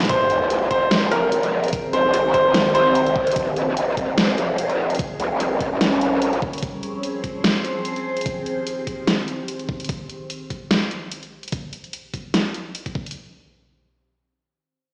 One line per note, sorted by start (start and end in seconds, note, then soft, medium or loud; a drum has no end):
0.00 snare medium
0.00 closed hi-hat soft
0.05 closed hi-hat medium
0.09 0.28 F1 medium
0.09 1.71 F3 medium
0.09 4.95 C4 medium
0.09 1.71 G#4 medium
0.09 0.63 C5 medium
0.09 4.95 C5 medium
0.09 kick loud
0.09 closed hi-hat medium
0.09 sub drop medium
0.30 0.69 G1 medium
0.30 closed hi-hat medium
0.50 closed hi-hat medium
0.71 1.10 D#1 medium
0.71 1.07 C5 medium
0.71 kick medium
0.71 closed hi-hat medium
0.91 snare loud
0.91 closed hi-hat medium
1.11 1.30 F1 loud
1.11 1.86 A#4 medium
1.11 closed hi-hat medium
1.32 1.71 D#1 loud
1.32 closed hi-hat medium
1.43 closed hi-hat soft
1.64 closed hi-hat soft
1.68 closed hi-hat medium
1.73 3.34 D#3 medium
1.73 3.34 G4 medium
1.73 kick loud
1.73 closed hi-hat medium
1.93 2.03 G1 medium
1.93 2.29 C5 medium
1.93 closed hi-hat medium
2.04 2.64 A#1 medium
2.14 closed hi-hat medium
2.34 2.70 C5 medium
2.34 kick medium
2.34 closed hi-hat medium
2.54 snare loud
2.54 closed hi-hat medium
2.66 3.35 C2 medium
2.75 3.29 C5 medium
2.75 closed hi-hat medium
2.95 closed hi-hat medium
3.06 closed hi-hat soft
3.16 kick loud
3.27 closed hi-hat soft
3.31 closed hi-hat medium
3.36 3.55 F1 medium
3.36 4.98 F3 medium
3.36 4.98 G#4 medium
3.36 kick loud
3.36 closed hi-hat medium
3.56 3.96 G1 medium
3.56 closed hi-hat soft
3.77 closed hi-hat medium
3.97 4.37 D#1 loud
3.97 kick medium
3.97 closed hi-hat medium
4.18 snare loud
4.18 closed hi-hat medium
4.38 4.57 F1 loud
4.38 closed hi-hat medium
4.58 4.98 D#1 medium
4.58 closed hi-hat medium
4.70 closed hi-hat soft
4.90 closed hi-hat soft
4.95 closed hi-hat medium
4.99 6.61 G3 medium
4.99 6.61 C#4 medium
4.99 6.61 A#4 medium
4.99 6.61 C#5 medium
4.99 kick loud
4.99 closed hi-hat medium
5.20 5.29 C#2 medium
5.20 closed hi-hat soft
5.31 5.59 G1 medium
5.40 closed hi-hat medium
5.61 5.70 G1 medium
5.61 kick medium
5.61 closed hi-hat soft
5.72 5.79 G#1 loud
5.81 6.41 A#1 loud
5.81 snare loud
5.81 closed hi-hat medium
6.01 closed hi-hat medium
6.22 closed hi-hat medium
6.33 closed hi-hat soft
6.42 kick loud
6.53 closed hi-hat soft
6.58 closed hi-hat medium
6.63 8.24 F3 medium
6.63 9.86 C4 medium
6.63 8.24 G#4 medium
6.63 9.86 C5 medium
6.63 kick loud
6.63 closed hi-hat medium
6.83 closed hi-hat soft
7.03 closed hi-hat medium
7.24 kick medium
7.24 closed hi-hat soft
7.44 snare loud
7.44 closed hi-hat medium
7.65 closed hi-hat soft
7.85 closed hi-hat medium
7.96 closed hi-hat soft
8.17 closed hi-hat soft
8.21 closed hi-hat medium
8.26 9.87 D#3 medium
8.26 9.87 G4 medium
8.26 kick loud
8.26 closed hi-hat medium
8.46 closed hi-hat soft
8.67 closed hi-hat medium
8.87 kick medium
8.87 closed hi-hat soft
9.07 snare loud
9.07 closed hi-hat medium
9.28 closed hi-hat soft
9.48 closed hi-hat medium
9.59 closed hi-hat soft
9.69 kick loud
9.80 closed hi-hat soft
9.85 closed hi-hat medium
9.89 kick loud
9.89 closed hi-hat medium
10.10 closed hi-hat soft
10.30 closed hi-hat medium
10.50 kick soft
10.50 closed hi-hat soft
10.71 snare loud
10.71 closed hi-hat medium
10.91 closed hi-hat medium
11.12 closed hi-hat medium
11.23 closed hi-hat soft
11.43 closed hi-hat soft
11.48 closed hi-hat medium
11.52 kick loud
11.52 closed hi-hat medium
11.73 closed hi-hat soft
11.84 closed hi-hat soft
11.93 closed hi-hat medium
12.14 kick medium
12.14 closed hi-hat medium
12.34 snare loud
12.34 closed hi-hat medium
12.54 closed hi-hat medium
12.75 closed hi-hat medium
12.86 kick medium
12.86 closed hi-hat soft
12.95 kick medium
13.06 closed hi-hat soft
13.11 closed hi-hat medium